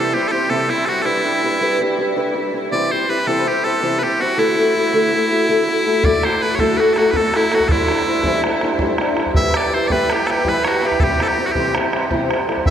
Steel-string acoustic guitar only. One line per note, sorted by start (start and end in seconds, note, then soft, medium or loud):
0.00 0.14 C3 medium
0.00 0.14 E3 medium
0.00 0.12 G3 medium
0.00 0.13 C4 medium
0.00 0.14 E4 medium
0.00 0.14 C5 medium
0.13 0.29 G3 soft
0.13 0.30 C4 soft
0.13 0.31 E4 soft
0.13 0.32 C5 medium
0.31 0.49 G3 medium
0.31 0.49 C4 soft
0.31 0.49 E4 medium
0.31 0.49 C5 medium
0.49 0.70 C3 medium
0.49 0.70 E3 medium
0.49 0.67 G3 medium
0.49 0.68 C4 medium
0.49 0.68 E4 medium
0.49 0.69 C5 medium
0.68 0.84 G3 medium
0.68 0.85 C4 medium
0.68 0.86 E4 soft
0.68 0.87 C5 medium
0.86 1.03 G3 medium
0.86 1.05 C4 soft
0.86 1.05 E4 medium
0.86 1.05 C5 medium
1.04 1.23 G3 medium
1.04 1.24 D4 medium
1.04 1.25 G4 medium
1.04 1.25 B4 medium
1.25 1.41 G3 soft
1.25 1.42 D4 soft
1.25 1.43 G4 soft
1.25 1.44 B4 medium
1.43 1.59 G3 medium
1.43 1.60 D4 medium
1.43 1.61 G4 medium
1.43 1.61 B4 medium
1.61 1.79 G3 medium
1.61 1.80 D4 medium
1.61 1.81 G4 medium
1.61 1.81 B4 medium
1.80 1.97 G3 medium
1.80 1.97 D4 medium
1.80 1.98 G4 medium
1.80 1.99 B4 medium
1.98 2.15 G3 medium
1.98 2.15 D4 medium
1.98 2.16 G4 medium
1.98 2.16 B4 medium
2.16 2.34 G3 medium
2.16 2.35 D4 medium
2.16 2.36 G4 medium
2.16 2.36 B4 medium
2.35 2.52 G3 medium
2.35 2.53 D4 medium
2.35 2.54 G4 medium
2.35 2.54 B4 medium
2.53 2.71 G3 medium
2.53 2.72 D4 medium
2.53 2.72 G4 medium
2.53 2.72 B4 medium
2.71 2.91 C3 medium
2.71 2.92 E3 medium
2.71 2.89 G3 medium
2.71 2.91 C4 medium
2.71 2.91 E4 medium
2.71 2.92 C5 medium
2.91 3.07 G3 medium
2.91 3.08 C4 soft
2.91 3.09 E4 soft
2.91 3.09 C5 medium
3.08 3.26 G3 soft
3.08 3.26 C4 soft
3.08 3.26 E4 medium
3.08 3.27 C5 medium
3.26 3.47 C3 medium
3.26 3.47 E3 medium
3.26 3.45 G3 medium
3.26 3.46 C4 medium
3.26 3.46 E4 medium
3.26 3.47 C5 medium
3.46 3.62 G3 soft
3.46 3.64 C4 soft
3.46 3.64 E4 medium
3.46 3.65 C5 medium
3.63 3.81 G3 soft
3.63 3.82 C4 medium
3.63 3.82 E4 medium
3.63 3.82 C5 medium
3.82 4.02 C3 medium
3.82 4.02 E3 medium
3.82 4.00 G3 medium
3.82 4.01 C4 medium
3.82 4.02 E4 medium
3.82 4.02 C5 medium
4.01 4.18 G3 medium
4.01 4.19 C4 soft
4.01 4.20 E4 soft
4.01 4.21 C5 medium
4.19 4.37 G3 soft
4.19 4.37 C4 medium
4.19 4.36 E4 medium
4.19 4.38 C5 medium
4.37 4.57 D3 medium
4.37 4.56 A3 medium
4.37 4.57 E4 medium
4.37 4.57 F#4 medium
4.37 4.58 A4 medium
4.57 4.74 A3 soft
4.57 4.74 E4 soft
4.57 4.75 F#4 medium
4.57 4.76 A4 soft
4.75 4.92 A3 soft
4.75 4.92 E4 medium
4.75 4.93 F#4 medium
4.75 4.93 A4 medium
4.93 5.13 D3 medium
4.93 5.11 A3 medium
4.93 5.12 E4 medium
4.93 5.13 F#4 medium
4.93 5.13 A4 medium
5.12 5.29 A3 medium
5.12 5.29 E4 medium
5.12 5.31 A4 medium
5.30 5.48 A3 medium
5.30 5.48 E4 medium
5.30 5.48 F#4 medium
5.30 5.49 A4 medium
5.48 5.68 D3 medium
5.48 5.66 A3 medium
5.48 5.67 E4 medium
5.48 5.68 F#4 medium
5.48 5.68 A4 medium
5.67 5.85 A3 medium
5.67 5.85 E4 medium
5.67 5.86 F#4 medium
5.67 5.87 A4 medium
5.86 6.03 A3 medium
5.86 6.03 E4 medium
5.86 6.04 F#4 medium
5.86 6.04 A4 medium
6.03 6.23 D3 medium
6.03 6.22 A3 medium
6.03 6.23 E4 medium
6.03 6.24 F#4 medium
6.03 6.24 A4 medium
6.24 6.40 A3 soft
6.24 6.41 E4 soft
6.24 6.42 F#4 soft
6.24 6.42 A4 soft
6.41 6.57 A3 soft
6.41 6.58 E4 soft
6.41 6.58 F#4 medium
6.41 6.59 A4 medium
6.59 6.79 D3 medium
6.59 6.78 A3 medium
6.59 6.79 E4 medium
6.59 6.79 F#4 medium
6.59 6.79 A4 medium
6.79 6.95 A3 soft
6.79 6.96 E4 medium
6.79 6.97 A4 medium
6.96 7.14 A3 medium
6.96 7.14 E4 medium
6.96 7.15 F#4 medium
6.96 7.15 A4 medium
7.14 7.34 D3 medium
7.14 7.32 A3 medium
7.14 7.33 E4 medium
7.14 7.34 F#4 medium
7.14 7.35 A4 medium
7.33 7.50 A3 soft
7.33 7.51 E4 medium
7.33 7.52 F#4 medium
7.33 7.53 A4 medium
7.52 7.69 A3 medium
7.52 7.70 E4 medium
7.52 7.70 F#4 medium
7.52 7.70 A4 medium
7.70 7.89 E3 medium
7.70 7.87 G3 medium
7.70 7.88 D4 medium
7.70 7.89 E4 medium
7.70 7.90 C5 medium
7.88 8.05 G3 soft
7.88 8.06 D4 medium
7.88 8.07 E4 soft
7.88 8.07 C5 medium
8.06 8.24 G3 medium
8.06 8.24 D4 medium
8.06 8.24 E4 medium
8.06 8.25 C5 medium
8.24 8.44 E3 medium
8.24 8.43 G3 medium
8.24 8.44 D4 medium
8.24 8.45 E4 medium
8.24 8.45 C5 medium
8.44 8.61 G3 medium
8.44 8.61 D4 medium
8.44 8.62 E4 medium
8.44 8.63 C5 medium
8.62 8.79 G3 medium
8.62 8.79 D4 medium
8.62 8.80 E4 medium
8.62 8.80 C5 medium
8.80 9.00 E3 medium
8.80 8.98 G3 medium
8.80 8.99 D4 medium
8.80 9.00 E4 medium
8.80 9.00 C5 medium
8.99 9.16 G3 medium
8.99 9.17 D4 medium
8.99 9.17 E4 medium
8.99 9.18 C5 medium
9.17 9.34 G3 medium
9.17 9.35 D4 medium
9.17 9.34 E4 medium
9.17 9.36 C5 medium
9.35 9.55 E3 medium
9.35 9.54 G3 medium
9.35 9.54 E4 medium
9.35 9.55 G4 medium
9.35 9.56 B4 medium
9.55 9.71 G3 soft
9.55 9.72 E4 medium
9.55 9.73 G4 medium
9.73 9.89 G3 medium
9.73 9.90 E4 medium
9.73 9.90 G4 medium
9.73 9.90 B4 medium
9.90 10.10 E3 medium
9.90 10.09 G3 medium
9.90 10.10 E4 medium
9.90 10.10 G4 medium
9.90 10.11 B4 medium
10.10 10.27 G3 soft
10.10 10.27 E4 soft
10.10 10.28 G4 soft
10.10 10.29 B4 medium
10.28 10.44 G3 medium
10.28 10.44 E4 medium
10.28 10.45 G4 medium
10.28 10.46 B4 medium
10.45 10.65 E3 medium
10.45 10.63 G3 medium
10.45 10.64 E4 medium
10.45 10.65 G4 medium
10.45 10.65 B4 medium
10.65 10.81 G3 soft
10.65 10.82 E4 medium
10.65 10.82 G4 medium
10.65 10.83 B4 medium
10.82 10.99 G3 medium
10.82 11.00 E4 medium
10.82 11.00 G4 medium
10.82 11.01 B4 medium
11.00 11.20 C3 medium
11.00 11.20 E3 medium
11.00 11.18 G3 medium
11.00 11.19 C4 medium
11.00 11.20 E4 medium
11.00 11.20 C5 medium
11.19 11.36 G3 medium
11.19 11.37 C4 soft
11.19 11.38 E4 medium
11.19 11.39 C5 soft
11.37 11.54 G3 soft
11.37 11.54 C4 medium
11.37 11.54 E4 medium
11.37 11.55 C5 medium
11.54 11.75 C3 medium
11.54 11.75 E3 medium
11.54 11.73 G3 medium
11.54 11.74 C4 medium
11.54 11.75 E4 medium
11.54 11.75 C5 medium
11.74 11.91 G3 medium
11.74 11.92 C4 medium
11.74 11.92 E4 medium
11.74 11.93 C5 medium
11.92 12.10 G3 medium
11.92 12.10 C4 medium
11.92 12.10 E4 medium
11.92 12.10 C5 medium
12.10 12.30 C3 medium
12.10 12.30 E3 medium
12.10 12.29 G3 medium
12.10 12.30 C4 medium
12.10 12.30 E4 medium
12.10 12.31 C5 medium
12.30 12.46 G3 medium
12.30 12.47 C4 medium
12.30 12.48 E4 medium
12.30 12.48 C5 medium
12.47 12.65 G3 medium
12.47 12.65 C4 medium
12.47 12.66 E4 medium
12.47 12.66 C5 medium
12.66 12.70 C3 medium
12.66 12.70 E3 medium
12.66 12.70 G3 medium
12.66 12.70 C4 medium
12.66 12.70 E4 medium
12.66 12.70 C5 medium